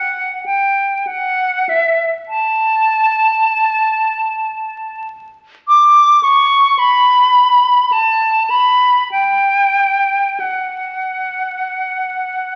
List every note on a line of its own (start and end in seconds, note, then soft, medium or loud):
0.00 0.45 F#5 medium
0.46 1.09 G5 medium
1.07 1.70 F#5 medium
1.69 2.08 E5 medium
2.28 5.09 A5 medium
5.68 6.25 D6 medium
6.23 6.80 C#6 medium
6.79 7.94 B5 medium
7.92 8.52 A5 medium
8.50 9.11 B5 medium
9.12 10.41 G5 medium
10.40 12.55 F#5 medium